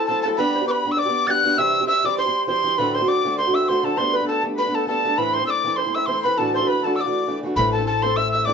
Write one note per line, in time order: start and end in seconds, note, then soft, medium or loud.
0.06 0.24 F#3 medium
0.06 0.26 A3 medium
0.06 0.25 C4 medium
0.06 0.25 A4 medium
0.06 0.24 A4 medium
0.06 0.22 A5 loud
0.11 0.26 E4 medium
0.23 0.38 F#3 medium
0.23 0.38 C4 medium
0.23 0.38 A4 medium
0.23 0.29 A5 medium
0.27 0.39 A3 medium
0.27 0.40 E4 medium
0.27 0.40 A4 medium
0.37 0.61 G3 medium
0.37 0.62 B3 medium
0.37 0.62 D4 medium
0.37 0.60 G4 loud
0.37 0.66 B4 medium
0.37 0.54 B4 medium
0.37 0.65 B5 loud
0.55 0.67 C5 medium
0.62 0.85 B3 soft
0.62 0.85 D4 soft
0.62 0.85 G4 soft
0.68 0.90 B4 medium
0.68 0.93 B5 medium
0.68 0.72 D6 medium
0.85 1.07 G3 medium
0.85 1.07 B3 medium
0.85 1.06 D4 medium
0.85 1.04 G4 medium
0.92 1.00 E6 medium
0.97 1.25 D5 medium
0.97 1.29 D5 medium
0.97 1.29 D6 loud
1.06 1.27 B3 soft
1.06 1.28 D4 soft
1.06 1.28 G4 medium
1.26 1.42 G3 medium
1.26 1.43 B3 medium
1.26 1.44 D4 medium
1.26 1.58 F#5 medium
1.26 1.56 F#5 medium
1.26 1.32 A6 loud
1.30 1.45 G4 medium
1.30 1.60 F#6 loud
1.43 1.57 G3 medium
1.43 1.58 B3 medium
1.43 1.58 D4 medium
1.43 1.58 G4 medium
1.56 1.81 C3 medium
1.56 1.81 E3 medium
1.56 1.82 G3 medium
1.56 1.81 C4 medium
1.56 1.79 G4 medium
1.56 1.85 E5 medium
1.56 1.86 E5 medium
1.56 1.87 E6 loud
1.80 2.04 G3 soft
1.80 2.05 C4 soft
1.80 2.04 G4 medium
1.86 2.04 E5 medium
1.86 2.03 E5 medium
1.86 2.07 E6 loud
2.03 2.26 E3 medium
2.03 2.26 G3 medium
2.03 2.26 C4 medium
2.03 2.24 G4 medium
2.03 2.18 D5 medium
2.03 2.18 D6 medium
2.18 2.46 C5 medium
2.18 2.46 C6 medium
2.26 2.47 G3 soft
2.26 2.48 C4 soft
2.26 2.48 G4 medium
2.47 2.62 E3 medium
2.47 2.64 G3 medium
2.47 2.65 C4 medium
2.47 2.65 G4 medium
2.47 2.77 C5 medium
2.47 2.80 C5 medium
2.47 2.80 C6 loud
2.64 2.78 E3 medium
2.64 2.78 G3 medium
2.64 2.78 C4 medium
2.64 2.79 G4 medium
2.78 3.01 D2 medium
2.78 3.01 A2 medium
2.78 3.01 D3 medium
2.78 3.02 A3 medium
2.78 3.01 C4 medium
2.78 3.00 F#4 medium
2.78 2.95 B4 medium
2.78 2.93 B4 medium
2.78 2.96 B5 loud
2.94 3.08 C5 medium
2.94 3.07 C5 medium
2.94 3.10 C6 medium
3.01 3.23 D3 soft
3.01 3.24 A3 medium
3.01 3.25 C4 soft
3.01 3.24 F#4 medium
3.06 3.38 D5 medium
3.06 3.23 D5 medium
3.06 3.38 D6 medium
3.25 3.46 D3 medium
3.25 3.47 A3 medium
3.25 3.46 C4 medium
3.25 3.46 F#4 medium
3.25 3.39 D5 medium
3.36 3.54 C5 medium
3.36 3.56 C6 medium
3.47 3.67 D3 soft
3.47 3.68 A3 soft
3.47 3.68 C4 medium
3.47 3.68 F#4 medium
3.53 3.66 E5 medium
3.53 3.70 E6 medium
3.65 3.82 D3 medium
3.65 3.83 C5 medium
3.65 3.85 C5 medium
3.65 3.86 C6 loud
3.69 3.83 A3 medium
3.69 3.84 C4 medium
3.69 3.84 F#4 medium
3.83 3.97 D3 medium
3.83 3.98 A3 medium
3.83 3.98 C4 medium
3.83 3.98 F#4 medium
3.83 3.98 A4 medium
3.83 3.97 A4 medium
3.83 3.99 A5 medium
3.95 4.21 G3 medium
3.95 4.21 A3 medium
3.95 4.03 C5 medium
3.95 4.13 C5 medium
3.95 4.18 C6 loud
4.00 4.21 B3 medium
4.00 4.19 D4 medium
4.10 4.26 B4 medium
4.16 4.28 B5 medium
4.21 4.44 A3 soft
4.21 4.45 B3 soft
4.21 4.44 D4 soft
4.25 4.42 A4 medium
4.25 4.44 A4 medium
4.25 4.43 A5 medium
4.44 4.66 G3 medium
4.44 4.66 A3 medium
4.44 4.67 B3 medium
4.44 4.65 D4 medium
4.56 4.74 B4 medium
4.56 4.73 B4 medium
4.56 4.76 B5 medium
4.67 4.87 A3 soft
4.67 4.88 B3 medium
4.67 4.88 D4 medium
4.74 4.84 A4 medium
4.74 4.87 A4 medium
4.74 4.88 A5 medium
4.86 5.03 G3 medium
4.86 5.04 A3 medium
4.86 5.05 B3 medium
4.86 5.17 A4 medium
4.86 5.19 A4 medium
4.86 5.19 A5 medium
4.90 5.05 D4 medium
5.04 5.17 G3 medium
5.04 5.18 A3 medium
5.04 5.18 B3 medium
5.04 5.19 D4 medium
5.17 5.41 A2 medium
5.17 5.41 E3 medium
5.17 5.41 A3 medium
5.17 5.41 C4 medium
5.17 5.40 E4 medium
5.17 5.34 B4 medium
5.17 5.33 B4 medium
5.17 5.35 B5 medium
5.33 5.47 C5 medium
5.33 5.49 C5 medium
5.33 5.46 C6 loud
5.41 5.64 A3 soft
5.41 5.65 C4 soft
5.41 5.64 E4 medium
5.46 5.62 D5 medium
5.46 5.76 D5 medium
5.46 5.78 D6 loud
5.46 5.51 E6 medium
5.63 5.86 E3 medium
5.63 5.86 A3 medium
5.63 5.86 C4 medium
5.63 5.77 D5 medium
5.67 5.85 E4 medium
5.76 5.93 C5 medium
5.76 5.96 C5 medium
5.76 5.96 C6 medium
5.86 6.08 A3 medium
5.86 6.07 C4 soft
5.86 6.07 E4 medium
5.95 6.08 E5 medium
5.95 6.09 E5 medium
5.95 6.08 E6 medium
6.06 6.24 E3 medium
6.06 6.25 A3 medium
6.06 6.24 C4 medium
6.06 6.25 E4 medium
6.06 6.24 C5 medium
6.06 6.25 C5 medium
6.06 6.22 C6 medium
6.23 6.37 E3 medium
6.23 6.38 A3 medium
6.23 6.38 C4 medium
6.23 6.37 B4 medium
6.23 6.38 B4 medium
6.23 6.39 B5 medium
6.28 6.39 E4 medium
6.36 6.61 D2 medium
6.36 6.61 A2 medium
6.36 6.61 E3 medium
6.36 6.61 A3 medium
6.36 6.61 D4 medium
6.36 6.60 F#4 medium
6.36 6.67 A4 medium
6.36 6.52 A4 medium
6.36 6.54 A5 loud
6.54 6.68 C5 medium
6.54 6.69 C6 medium
6.61 6.82 E3 soft
6.61 6.83 A3 soft
6.61 6.84 D4 soft
6.61 6.84 F#4 soft
6.66 6.83 B4 medium
6.66 6.86 B5 medium
6.82 7.05 E3 medium
6.82 7.05 A3 medium
6.82 7.05 D4 medium
6.82 6.97 A4 medium
6.82 6.98 A4 medium
6.82 6.97 A5 medium
6.86 7.04 F#4 medium
6.95 7.39 D5 medium
6.95 7.41 D5 medium
6.95 7.02 E6 medium
7.01 7.33 D6 medium
7.05 7.26 E3 soft
7.05 7.27 A3 soft
7.05 7.27 D4 soft
7.05 7.27 F#4 medium
7.27 7.42 E3 medium
7.27 7.42 A3 medium
7.27 7.44 D4 medium
7.27 7.44 F#4 medium
7.43 7.56 E3 medium
7.43 7.56 A3 medium
7.43 7.57 D4 medium
7.43 7.58 F#4 medium
7.56 8.53 A1 medium
7.56 7.79 A2 medium
7.56 7.80 A3 medium
7.56 7.80 C4 medium
7.56 7.80 E4 medium
7.56 7.79 A4 medium
7.56 7.73 B4 medium
7.56 7.72 B5 loud
7.72 7.84 A4 medium
7.72 7.86 A4 medium
7.72 7.85 A5 medium
7.80 8.04 C4 soft
7.80 8.04 E4 soft
7.80 8.03 A4 soft
7.85 8.16 A4 medium
7.85 8.04 A4 medium
7.85 8.04 A5 medium
8.02 8.45 A3 medium
8.02 8.46 C4 medium
8.02 8.47 E4 medium
8.02 8.47 A4 medium
8.02 8.15 C5 medium
8.02 8.18 C6 medium
8.16 8.31 E5 medium
8.16 8.33 E5 medium
8.16 8.31 E6 medium
8.32 8.46 E5 medium
8.32 8.47 E6 medium
8.44 8.53 A3 medium
8.44 8.53 C4 medium
8.44 8.53 E4 medium
8.44 8.53 D5 medium
8.44 8.53 D6 loud
8.49 8.53 A4 medium